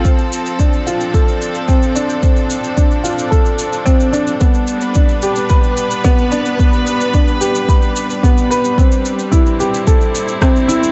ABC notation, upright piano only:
X:1
M:4/4
L:1/8
Q:1/4=110
K:Ddor
V:1 name="Upright piano"
C z D F A z C D | C z D F A z C D | B, z D G B z B, D | B, z D G B z B, B |
C z E G A z C E |]